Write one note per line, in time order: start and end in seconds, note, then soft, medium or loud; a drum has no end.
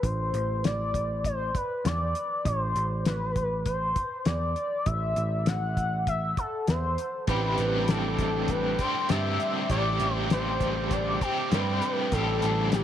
0.03 0.31 A1 medium
0.03 0.66 C5 medium
0.03 kick loud
0.03 closed hi-hat medium
0.34 1.50 A1 medium
0.34 closed hi-hat medium
0.64 1.25 D5 medium
0.64 snare medium
0.64 closed hi-hat medium
0.94 kick medium
0.94 closed hi-hat medium
1.24 1.58 C5 medium
1.24 kick medium
1.24 closed hi-hat medium
1.55 1.88 B4 medium
1.55 kick medium
1.55 closed hi-hat medium
1.85 2.13 E2 medium
1.85 2.48 D5 medium
1.85 snare loud
1.85 closed hi-hat medium
2.15 closed hi-hat medium
2.45 2.73 A1 medium
2.45 3.06 C5 loud
2.45 kick loud
2.45 closed hi-hat medium
2.76 3.92 A1 medium
2.76 closed hi-hat medium
3.05 3.63 B4 medium
3.05 snare loud
3.05 closed hi-hat medium
3.36 kick medium
3.36 closed hi-hat medium
3.66 4.27 C5 loud
3.66 kick medium
3.66 closed hi-hat medium
3.96 kick medium
3.96 closed hi-hat medium
4.25 4.54 E2 medium
4.25 4.87 D5 loud
4.25 snare medium
4.25 closed hi-hat medium
4.56 closed hi-hat soft
4.86 5.14 A1 medium
4.86 5.49 E5 loud
4.86 kick loud
4.86 closed hi-hat medium
5.16 6.34 A1 medium
5.16 closed hi-hat medium
5.46 6.08 F#5 loud
5.46 snare loud
5.46 closed hi-hat medium
5.77 kick medium
5.77 closed hi-hat medium
6.07 6.36 E5 loud
6.07 kick medium
6.07 closed hi-hat medium
6.37 6.66 A4 medium
6.37 kick medium
6.37 closed hi-hat medium
6.67 6.96 E2 medium
6.67 7.25 C5 loud
6.67 snare medium
6.67 closed hi-hat medium
6.98 closed hi-hat medium
7.27 7.56 A1 medium
7.27 8.77 A2 medium
7.27 8.78 D3 medium
7.27 12.84 G3 medium
7.27 8.80 G3 medium
7.27 8.79 C4 medium
7.27 8.78 G4 medium
7.27 7.91 B4 loud
7.27 12.84 D5 soft
7.27 12.09 G5 medium
7.27 12.84 D6 medium
7.27 kick loud
7.27 closed hi-hat medium
7.58 8.75 A1 medium
7.58 closed hi-hat medium
7.88 8.52 A4 medium
7.88 snare loud
7.88 closed hi-hat medium
8.19 kick medium
8.19 closed hi-hat medium
8.48 8.82 B4 medium
8.48 kick medium
8.48 closed hi-hat medium
8.79 9.08 A2 medium
8.79 9.08 D3 medium
8.79 9.10 G3 medium
8.79 9.10 C4 medium
8.79 9.11 G4 medium
8.79 9.11 C5 medium
8.79 kick medium
8.79 closed hi-hat medium
9.09 9.37 G2 medium
9.09 9.68 A2 medium
9.09 9.68 D3 medium
9.09 9.70 G3 medium
9.09 9.71 C4 medium
9.09 9.71 G4 medium
9.09 9.70 E5 medium
9.09 snare loud
9.09 closed hi-hat medium
9.40 closed hi-hat soft
9.69 9.98 A1 medium
9.69 11.19 A2 medium
9.69 11.19 D3 medium
9.69 11.22 G3 medium
9.69 11.22 C4 medium
9.69 11.21 G4 medium
9.69 10.13 D5 loud
9.69 kick medium
9.69 closed hi-hat medium
10.00 11.17 A1 medium
10.00 closed hi-hat medium
10.13 10.27 C5 loud
10.30 10.94 C5 medium
10.30 snare loud
10.30 closed hi-hat medium
10.60 kick medium
10.60 closed hi-hat medium
10.91 11.23 D5 medium
10.91 kick medium
10.91 closed hi-hat medium
11.21 11.49 A2 medium
11.21 11.50 D3 medium
11.21 11.52 G3 medium
11.21 11.52 C4 medium
11.21 11.53 G4 medium
11.21 11.55 G4 medium
11.21 kick medium
11.21 closed hi-hat medium
11.50 11.79 G2 medium
11.50 12.10 A2 medium
11.50 12.10 D3 medium
11.50 12.13 G3 medium
11.50 12.14 C4 medium
11.50 12.14 G4 medium
11.50 12.12 B4 medium
11.50 snare loud
11.50 closed hi-hat medium
11.82 closed hi-hat medium
12.12 12.40 A1 medium
12.12 12.84 A2 medium
12.12 12.84 D3 medium
12.12 12.84 G3 medium
12.12 12.84 C4 medium
12.12 12.84 G4 medium
12.12 12.76 A4 medium
12.12 12.84 B5 medium
12.12 kick loud
12.12 closed hi-hat medium
12.42 12.84 A1 medium
12.42 closed hi-hat medium
12.72 12.84 G4 medium
12.72 snare loud
12.72 closed hi-hat medium